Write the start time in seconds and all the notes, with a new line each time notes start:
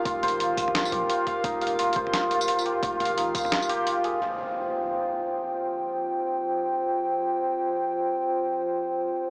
Already playing: F3 D#4 F4 G4 A#4 F5
0.05 F1 F4, kick, closed hi-hat
0.23 C5, closed hi-hat, mid tom
0.28 closed hi-hat
0.33 G#1
0.40 F4, closed hi-hat
0.57 F4, kick, closed hi-hat, tambourine
0.68 mid tom
0.75 F4, snare, closed hi-hat, mid tom
0.85 tambourine
0.92 A#1 G4, closed hi-hat
1.02 D#1
1.09 F4, closed hi-hat
1.27 F5, kick, closed hi-hat
1.44 F1 D#4, kick, closed hi-hat
1.61 F5, closed hi-hat
1.67 closed hi-hat
1.79 F4, closed hi-hat
1.93 C5, kick, closed hi-hat
2.07 mid tom
2.13 F4, snare, closed hi-hat
2.31 F4, closed hi-hat
2.41 tambourine
2.48 F4, closed hi-hat
2.59 tambourine
2.66 G4, closed hi-hat
2.83 F1 F4, kick, closed hi-hat
3.00 F5, closed hi-hat, mid tom
3.05 closed hi-hat
3.10 G#1
3.17 D#4, closed hi-hat
3.35 F5, kick, closed hi-hat, tambourine
3.38 tambourine
3.41 tambourine
3.44 mid tom, tambourine
3.46 tambourine
3.48 tambourine
3.50 F1 F4, snare, closed hi-hat, mid tom, tambourine
3.62 tambourine
3.69 G4, closed hi-hat
3.87 F4, closed hi-hat
4.04 G#4, closed hi-hat
4.22 F4 C5 G5, impact